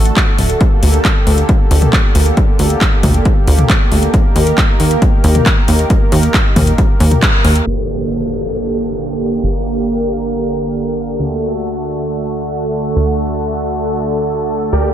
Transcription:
0.00 0.11 A1 loud
0.00 0.57 D3 medium
0.00 0.57 A3 medium
0.00 0.57 F#4 medium
0.00 4.10 A4 medium
0.05 closed hi-hat medium
0.16 kick loud
0.16 clap loud
0.16 closed hi-hat medium
0.39 0.55 D1 medium
0.39 open hi-hat loud
0.50 closed hi-hat medium
0.61 4.10 D3 medium
0.61 7.63 A#3 medium
0.61 7.63 G4 medium
0.61 kick loud
0.61 closed hi-hat medium
0.83 0.99 D2 loud
0.83 open hi-hat loud
0.94 closed hi-hat medium
1.05 kick loud
1.05 clap loud
1.05 closed hi-hat medium
1.27 1.44 D2 loud
1.27 open hi-hat loud
1.38 closed hi-hat medium
1.49 kick loud
1.49 closed hi-hat medium
1.71 1.88 D2 loud
1.71 open hi-hat loud
1.82 closed hi-hat medium
1.82 mid tom medium
1.93 kick loud
1.93 clap loud
1.93 closed hi-hat medium
2.15 2.32 D2 medium
2.15 open hi-hat loud
2.26 closed hi-hat medium
2.37 kick loud
2.37 closed hi-hat medium
2.59 2.76 D2 loud
2.59 open hi-hat medium
2.70 closed hi-hat medium
2.81 kick loud
2.81 clap loud
2.81 closed hi-hat medium
3.03 3.20 D2 medium
3.03 kick medium
3.03 open hi-hat loud
3.03 mid tom medium
3.14 closed hi-hat medium
3.25 kick loud
3.25 closed hi-hat medium
3.47 3.64 D2 loud
3.47 open hi-hat loud
3.59 closed hi-hat medium
3.59 mid tom medium
3.70 kick loud
3.70 clap loud
3.70 closed hi-hat medium
3.92 4.08 D2 medium
3.92 open hi-hat medium
4.03 closed hi-hat medium
4.14 7.63 D#3 medium
4.14 7.63 A#4 medium
4.14 kick loud
4.14 closed hi-hat medium
4.36 4.52 D#2 medium
4.36 open hi-hat medium
4.47 closed hi-hat medium
4.58 kick loud
4.58 clap loud
4.58 closed hi-hat medium
4.80 4.97 D#2 medium
4.80 open hi-hat loud
4.91 closed hi-hat medium
5.02 kick loud
5.02 closed hi-hat medium
5.24 5.41 D#2 loud
5.24 open hi-hat loud
5.35 closed hi-hat medium
5.35 mid tom medium
5.46 kick loud
5.46 clap loud
5.46 closed hi-hat medium
5.68 5.85 D#2 medium
5.68 open hi-hat loud
5.79 closed hi-hat medium
5.90 kick loud
5.90 closed hi-hat medium
6.12 6.29 D#2 loud
6.12 open hi-hat loud
6.23 closed hi-hat medium
6.34 kick loud
6.34 clap loud
6.34 closed hi-hat medium
6.56 6.73 D#2 loud
6.56 kick medium
6.56 open hi-hat loud
6.56 mid tom medium
6.67 closed hi-hat medium
6.78 kick loud
6.78 closed hi-hat medium
7.00 7.17 D#2 loud
7.00 open hi-hat loud
7.11 closed hi-hat medium
7.11 mid tom medium
7.22 kick loud
7.22 clap loud
7.22 closed hi-hat medium
7.44 7.61 D#2 medium
7.44 open hi-hat loud
7.56 closed hi-hat medium
7.66 9.41 G1 medium
7.66 14.94 D3 medium
7.66 11.16 A#3 medium
7.66 11.16 G4 medium
7.66 9.41 A4 medium
7.66 crash medium
7.66 downlifter medium
9.43 11.17 G1 medium
9.43 11.18 A#4 medium
11.20 12.94 D2 medium
11.20 14.69 A3 medium
11.20 14.69 F#4 medium
11.20 14.94 A4 medium
12.96 14.70 D2 medium
14.72 14.94 D2 medium
14.72 14.94 A#3 medium
14.72 14.82 G4 medium
14.72 14.94 G4 medium
14.72 14.82 A#4 medium
14.72 14.82 D5 medium
14.72 14.82 G5 medium
14.84 14.93 G4 medium

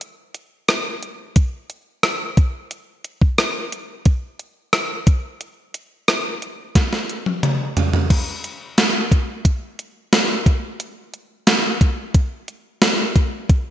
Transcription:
0.01 closed hi-hat medium
0.34 closed hi-hat medium
0.68 cross-stick loud
0.68 closed hi-hat medium
1.03 closed hi-hat medium
1.36 kick medium
1.36 closed hi-hat medium
1.70 closed hi-hat medium
2.03 cross-stick medium
2.03 closed hi-hat medium
2.37 kick medium
2.37 closed hi-hat medium
2.71 closed hi-hat medium
3.04 closed hi-hat medium
3.22 kick medium
3.38 cross-stick loud
3.38 closed hi-hat medium
3.72 closed hi-hat medium
4.05 kick medium
4.05 closed hi-hat medium
4.39 closed hi-hat medium
4.73 cross-stick medium
4.73 closed hi-hat medium
5.07 kick medium
5.07 closed hi-hat medium
5.41 closed hi-hat medium
5.74 closed hi-hat medium
6.08 cross-stick loud
6.08 closed hi-hat medium
6.42 closed hi-hat medium
6.75 kick medium
6.75 snare soft
6.75 closed hi-hat medium
6.93 snare soft
7.09 closed hi-hat medium
7.26 high tom medium
7.43 closed hi-hat medium
7.43 mid tom medium
7.77 closed hi-hat medium
7.77 floor tom medium
7.93 floor tom medium
8.10 kick medium
8.10 closed hi-hat medium
8.10 crash medium
8.44 closed hi-hat medium
8.78 snare loud
8.78 closed hi-hat medium
9.12 kick medium
9.12 closed hi-hat medium
9.45 kick medium
9.45 closed hi-hat medium
9.79 closed hi-hat medium
10.13 snare loud
10.13 closed hi-hat medium
10.46 kick medium
10.46 closed hi-hat medium
10.80 closed hi-hat medium
11.14 closed hi-hat medium
11.47 snare loud
11.47 closed hi-hat medium
11.81 kick medium
11.81 closed hi-hat medium
12.14 kick medium
12.14 closed hi-hat medium
12.48 closed hi-hat medium
12.82 snare loud
12.82 closed hi-hat medium
13.16 kick medium
13.16 closed hi-hat medium
13.49 kick medium
13.49 closed hi-hat medium

